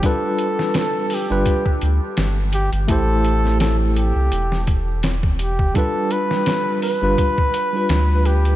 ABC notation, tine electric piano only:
X:1
M:4/4
L:1/16
Q:"Swing 16ths" 1/4=84
K:Gmix
V:1 name="Tine electric piano"
[G,DFB]6- [G,DFB] [G,DFB]2 z6 z | [A,EGc]6- [A,EGc] z8 z | [G,DFB]6- [G,DFB] [G,DFB]2 z2 [G,DFB]4- [G,DFB] |]